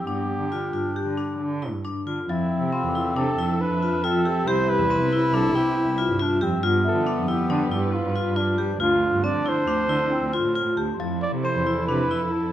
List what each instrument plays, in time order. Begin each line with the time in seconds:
Already playing: flugelhorn G4
0.06 cello G2, clarinet B3, vibraphone D4
0.39 cello D3
0.50 clarinet D4, vibraphone F4
0.72 cello G2, vibraphone F4
0.96 vibraphone G4
1.05 cello D3
1.18 vibraphone D4
1.39 cello D3
1.62 vibraphone E4
1.72 cello G2
1.85 vibraphone D4
2.06 cello D3, vibraphone F4
2.28 cello F2, string section F3 A4 E5, vibraphone F3, clarinet C4, flugelhorn E4
2.61 cello C3
2.73 vibraphone C4, flugelhorn F4, celesta B5
2.83 cello E2
2.88 celesta D6
2.95 vibraphone E4
3.15 cello C3, vibraphone D4, flugelhorn A4
3.38 cello F2, vibraphone E4
3.60 clarinet D4, flugelhorn B4
3.70 cello F2
3.82 vibraphone F4
3.92 cello F2
4.04 clarinet C4, vibraphone F4, flugelhorn A4
4.25 cello F3, vibraphone G4
4.45 cello C2, string section C3 B3, clarinet E4, vibraphone G4, flugelhorn C5
4.70 flugelhorn B4
4.78 cello E2
4.91 vibraphone C4
5.00 cello C3
5.13 vibraphone E4
5.32 cello C2, vibraphone D4, flugelhorn A4, celesta A5
5.54 cello C3, vibraphone E4, flugelhorn G4
5.86 cello C2
5.98 vibraphone F4
6.08 cello G2
6.19 clarinet D4, vibraphone F4
6.41 cello F2, clarinet C4, vibraphone G4
6.62 cello G2, string section F3 G3 B4, clarinet B3, vibraphone F4
6.84 flugelhorn A4, celesta E5
6.94 cello D3
7.07 vibraphone D4
7.17 cello F2
7.28 vibraphone E4, flugelhorn G4
7.49 cello D3, vibraphone D4
7.71 cello G2, vibraphone E4
7.94 flugelhorn F4
8.04 cello G2
8.15 vibraphone F4
8.25 cello G2
8.36 flugelhorn D4, vibraphone F4
8.58 cello G3, vibraphone G4
8.78 cello D2, string section D3 F3 C4, clarinet D4, vibraphone F4, flugelhorn F4
9.13 cello G2
9.24 vibraphone C4, flugelhorn D5
9.34 cello D3
9.46 vibraphone E4, flugelhorn C5
9.67 cello D2, vibraphone D4
9.89 cello D3, vibraphone E4
10.11 clarinet C4
10.22 cello D2
10.33 vibraphone F4, clarinet F4
10.44 cello A2
10.56 vibraphone F4
10.77 cello D2, vibraphone G4, celesta A5
10.94 celesta C6
10.98 cello F2, string section F3 E4 A4, vibraphone F3, clarinet E4
11.22 flugelhorn D5
11.33 cello C3
11.44 vibraphone C4, flugelhorn C5
11.55 cello E2
11.67 vibraphone E4
11.87 cello C3, vibraphone D4, flugelhorn B4
12.10 cello F2, vibraphone E4
12.24 flugelhorn B4
12.32 flugelhorn A4
12.43 cello F2